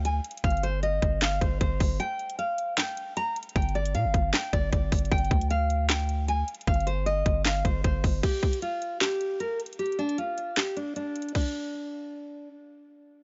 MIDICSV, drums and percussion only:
0, 0, Header, 1, 2, 480
1, 0, Start_track
1, 0, Tempo, 389610
1, 542, Time_signature, 4, 2, 24, 8
1, 16303, End_track
2, 0, Start_track
2, 0, Title_t, "Drums"
2, 61, Note_on_c, 9, 42, 87
2, 185, Note_off_c, 9, 42, 0
2, 301, Note_on_c, 9, 42, 77
2, 381, Note_off_c, 9, 42, 0
2, 381, Note_on_c, 9, 42, 73
2, 462, Note_off_c, 9, 42, 0
2, 462, Note_on_c, 9, 42, 65
2, 542, Note_off_c, 9, 42, 0
2, 542, Note_on_c, 9, 36, 120
2, 542, Note_on_c, 9, 42, 59
2, 621, Note_off_c, 9, 42, 0
2, 621, Note_on_c, 9, 42, 52
2, 665, Note_off_c, 9, 36, 0
2, 701, Note_off_c, 9, 42, 0
2, 701, Note_on_c, 9, 42, 47
2, 781, Note_off_c, 9, 42, 0
2, 781, Note_on_c, 9, 42, 82
2, 904, Note_off_c, 9, 42, 0
2, 1021, Note_on_c, 9, 42, 81
2, 1145, Note_off_c, 9, 42, 0
2, 1260, Note_on_c, 9, 36, 93
2, 1261, Note_on_c, 9, 42, 74
2, 1384, Note_off_c, 9, 36, 0
2, 1384, Note_off_c, 9, 42, 0
2, 1501, Note_on_c, 9, 38, 124
2, 1502, Note_on_c, 9, 42, 77
2, 1507, Note_on_c, 9, 39, 99
2, 1624, Note_off_c, 9, 38, 0
2, 1625, Note_off_c, 9, 42, 0
2, 1630, Note_off_c, 9, 39, 0
2, 1742, Note_on_c, 9, 36, 91
2, 1742, Note_on_c, 9, 42, 73
2, 1865, Note_off_c, 9, 36, 0
2, 1865, Note_off_c, 9, 42, 0
2, 1982, Note_on_c, 9, 36, 96
2, 1982, Note_on_c, 9, 42, 87
2, 2105, Note_off_c, 9, 36, 0
2, 2105, Note_off_c, 9, 42, 0
2, 2222, Note_on_c, 9, 46, 83
2, 2223, Note_on_c, 9, 36, 106
2, 2345, Note_off_c, 9, 46, 0
2, 2346, Note_off_c, 9, 36, 0
2, 2462, Note_on_c, 9, 42, 80
2, 2585, Note_off_c, 9, 42, 0
2, 2702, Note_on_c, 9, 42, 50
2, 2825, Note_off_c, 9, 42, 0
2, 2829, Note_on_c, 9, 42, 82
2, 2942, Note_off_c, 9, 42, 0
2, 2942, Note_on_c, 9, 42, 77
2, 3065, Note_off_c, 9, 42, 0
2, 3182, Note_on_c, 9, 42, 76
2, 3305, Note_off_c, 9, 42, 0
2, 3421, Note_on_c, 9, 38, 121
2, 3422, Note_on_c, 9, 42, 78
2, 3427, Note_on_c, 9, 39, 98
2, 3544, Note_off_c, 9, 38, 0
2, 3545, Note_off_c, 9, 42, 0
2, 3550, Note_off_c, 9, 39, 0
2, 3662, Note_on_c, 9, 42, 74
2, 3786, Note_off_c, 9, 42, 0
2, 3903, Note_on_c, 9, 42, 90
2, 4026, Note_off_c, 9, 42, 0
2, 4143, Note_on_c, 9, 42, 78
2, 4222, Note_off_c, 9, 42, 0
2, 4222, Note_on_c, 9, 42, 74
2, 4302, Note_off_c, 9, 42, 0
2, 4302, Note_on_c, 9, 42, 66
2, 4382, Note_off_c, 9, 42, 0
2, 4382, Note_on_c, 9, 36, 123
2, 4382, Note_on_c, 9, 42, 59
2, 4462, Note_off_c, 9, 42, 0
2, 4462, Note_on_c, 9, 42, 53
2, 4505, Note_off_c, 9, 36, 0
2, 4542, Note_off_c, 9, 42, 0
2, 4542, Note_on_c, 9, 42, 48
2, 4622, Note_off_c, 9, 42, 0
2, 4622, Note_on_c, 9, 42, 50
2, 4746, Note_off_c, 9, 42, 0
2, 4749, Note_on_c, 9, 42, 83
2, 4862, Note_off_c, 9, 42, 0
2, 4862, Note_on_c, 9, 42, 81
2, 4985, Note_off_c, 9, 42, 0
2, 5101, Note_on_c, 9, 36, 100
2, 5102, Note_on_c, 9, 42, 74
2, 5224, Note_off_c, 9, 36, 0
2, 5225, Note_off_c, 9, 42, 0
2, 5341, Note_on_c, 9, 38, 119
2, 5342, Note_on_c, 9, 42, 76
2, 5347, Note_on_c, 9, 39, 100
2, 5464, Note_off_c, 9, 38, 0
2, 5465, Note_off_c, 9, 42, 0
2, 5470, Note_off_c, 9, 39, 0
2, 5582, Note_on_c, 9, 36, 92
2, 5582, Note_on_c, 9, 42, 71
2, 5705, Note_off_c, 9, 42, 0
2, 5706, Note_off_c, 9, 36, 0
2, 5822, Note_on_c, 9, 36, 96
2, 5822, Note_on_c, 9, 42, 90
2, 5945, Note_off_c, 9, 36, 0
2, 5946, Note_off_c, 9, 42, 0
2, 6062, Note_on_c, 9, 42, 76
2, 6062, Note_on_c, 9, 46, 84
2, 6063, Note_on_c, 9, 36, 102
2, 6143, Note_off_c, 9, 42, 0
2, 6143, Note_on_c, 9, 42, 73
2, 6185, Note_off_c, 9, 46, 0
2, 6186, Note_off_c, 9, 36, 0
2, 6223, Note_off_c, 9, 42, 0
2, 6223, Note_on_c, 9, 42, 68
2, 6303, Note_off_c, 9, 42, 0
2, 6303, Note_on_c, 9, 36, 120
2, 6303, Note_on_c, 9, 42, 58
2, 6383, Note_off_c, 9, 42, 0
2, 6383, Note_on_c, 9, 42, 55
2, 6426, Note_off_c, 9, 36, 0
2, 6462, Note_off_c, 9, 42, 0
2, 6462, Note_on_c, 9, 42, 48
2, 6542, Note_on_c, 9, 36, 111
2, 6543, Note_off_c, 9, 42, 0
2, 6543, Note_on_c, 9, 42, 49
2, 6665, Note_off_c, 9, 36, 0
2, 6666, Note_off_c, 9, 42, 0
2, 6670, Note_on_c, 9, 42, 79
2, 6782, Note_off_c, 9, 42, 0
2, 6782, Note_on_c, 9, 42, 79
2, 6905, Note_off_c, 9, 42, 0
2, 7023, Note_on_c, 9, 42, 78
2, 7146, Note_off_c, 9, 42, 0
2, 7263, Note_on_c, 9, 38, 123
2, 7263, Note_on_c, 9, 42, 77
2, 7268, Note_on_c, 9, 39, 102
2, 7386, Note_off_c, 9, 38, 0
2, 7386, Note_off_c, 9, 42, 0
2, 7391, Note_off_c, 9, 39, 0
2, 7502, Note_on_c, 9, 42, 76
2, 7626, Note_off_c, 9, 42, 0
2, 7743, Note_on_c, 9, 42, 88
2, 7866, Note_off_c, 9, 42, 0
2, 7983, Note_on_c, 9, 42, 80
2, 8063, Note_off_c, 9, 42, 0
2, 8063, Note_on_c, 9, 42, 73
2, 8144, Note_off_c, 9, 42, 0
2, 8144, Note_on_c, 9, 42, 67
2, 8223, Note_off_c, 9, 42, 0
2, 8223, Note_on_c, 9, 36, 123
2, 8223, Note_on_c, 9, 42, 59
2, 8303, Note_off_c, 9, 42, 0
2, 8303, Note_on_c, 9, 42, 52
2, 8346, Note_off_c, 9, 36, 0
2, 8383, Note_off_c, 9, 42, 0
2, 8383, Note_on_c, 9, 42, 46
2, 8463, Note_off_c, 9, 42, 0
2, 8463, Note_on_c, 9, 42, 82
2, 8586, Note_off_c, 9, 42, 0
2, 8703, Note_on_c, 9, 42, 76
2, 8826, Note_off_c, 9, 42, 0
2, 8942, Note_on_c, 9, 36, 97
2, 8944, Note_on_c, 9, 42, 75
2, 9065, Note_off_c, 9, 36, 0
2, 9067, Note_off_c, 9, 42, 0
2, 9183, Note_on_c, 9, 38, 126
2, 9183, Note_on_c, 9, 42, 77
2, 9188, Note_on_c, 9, 39, 96
2, 9306, Note_off_c, 9, 38, 0
2, 9306, Note_off_c, 9, 42, 0
2, 9311, Note_off_c, 9, 39, 0
2, 9423, Note_on_c, 9, 36, 91
2, 9424, Note_on_c, 9, 42, 73
2, 9547, Note_off_c, 9, 36, 0
2, 9547, Note_off_c, 9, 42, 0
2, 9663, Note_on_c, 9, 36, 94
2, 9664, Note_on_c, 9, 42, 89
2, 9787, Note_off_c, 9, 36, 0
2, 9787, Note_off_c, 9, 42, 0
2, 9904, Note_on_c, 9, 36, 102
2, 9904, Note_on_c, 9, 46, 84
2, 10027, Note_off_c, 9, 46, 0
2, 10028, Note_off_c, 9, 36, 0
2, 10144, Note_on_c, 9, 36, 111
2, 10144, Note_on_c, 9, 42, 77
2, 10144, Note_on_c, 9, 49, 90
2, 10267, Note_off_c, 9, 36, 0
2, 10267, Note_off_c, 9, 42, 0
2, 10267, Note_off_c, 9, 49, 0
2, 10383, Note_on_c, 9, 36, 108
2, 10384, Note_on_c, 9, 42, 47
2, 10506, Note_off_c, 9, 36, 0
2, 10507, Note_off_c, 9, 42, 0
2, 10510, Note_on_c, 9, 42, 75
2, 10623, Note_off_c, 9, 42, 0
2, 10623, Note_on_c, 9, 42, 75
2, 10746, Note_off_c, 9, 42, 0
2, 10864, Note_on_c, 9, 42, 75
2, 10987, Note_off_c, 9, 42, 0
2, 11103, Note_on_c, 9, 38, 119
2, 11103, Note_on_c, 9, 42, 74
2, 11108, Note_on_c, 9, 39, 93
2, 11226, Note_off_c, 9, 38, 0
2, 11226, Note_off_c, 9, 42, 0
2, 11231, Note_off_c, 9, 39, 0
2, 11343, Note_on_c, 9, 42, 69
2, 11466, Note_off_c, 9, 42, 0
2, 11583, Note_on_c, 9, 42, 84
2, 11706, Note_off_c, 9, 42, 0
2, 11823, Note_on_c, 9, 42, 74
2, 11904, Note_off_c, 9, 42, 0
2, 11904, Note_on_c, 9, 42, 69
2, 11983, Note_off_c, 9, 42, 0
2, 11983, Note_on_c, 9, 42, 64
2, 12064, Note_off_c, 9, 42, 0
2, 12064, Note_on_c, 9, 42, 57
2, 12143, Note_off_c, 9, 42, 0
2, 12143, Note_on_c, 9, 42, 49
2, 12225, Note_off_c, 9, 42, 0
2, 12225, Note_on_c, 9, 42, 46
2, 12305, Note_off_c, 9, 42, 0
2, 12305, Note_on_c, 9, 42, 47
2, 12428, Note_off_c, 9, 42, 0
2, 12432, Note_on_c, 9, 42, 75
2, 12545, Note_off_c, 9, 42, 0
2, 12545, Note_on_c, 9, 42, 75
2, 12668, Note_off_c, 9, 42, 0
2, 12784, Note_on_c, 9, 42, 71
2, 12908, Note_off_c, 9, 42, 0
2, 13023, Note_on_c, 9, 38, 119
2, 13024, Note_on_c, 9, 42, 73
2, 13029, Note_on_c, 9, 39, 95
2, 13147, Note_off_c, 9, 38, 0
2, 13147, Note_off_c, 9, 42, 0
2, 13152, Note_off_c, 9, 39, 0
2, 13264, Note_on_c, 9, 42, 70
2, 13388, Note_off_c, 9, 42, 0
2, 13504, Note_on_c, 9, 42, 84
2, 13627, Note_off_c, 9, 42, 0
2, 13744, Note_on_c, 9, 42, 74
2, 13824, Note_off_c, 9, 42, 0
2, 13824, Note_on_c, 9, 42, 66
2, 13904, Note_off_c, 9, 42, 0
2, 13904, Note_on_c, 9, 42, 62
2, 13984, Note_off_c, 9, 42, 0
2, 13984, Note_on_c, 9, 36, 102
2, 13984, Note_on_c, 9, 42, 56
2, 13984, Note_on_c, 9, 49, 85
2, 14064, Note_off_c, 9, 42, 0
2, 14064, Note_on_c, 9, 42, 49
2, 14107, Note_off_c, 9, 36, 0
2, 14107, Note_off_c, 9, 49, 0
2, 14144, Note_off_c, 9, 42, 0
2, 14144, Note_on_c, 9, 42, 43
2, 14267, Note_off_c, 9, 42, 0
2, 16303, End_track
0, 0, End_of_file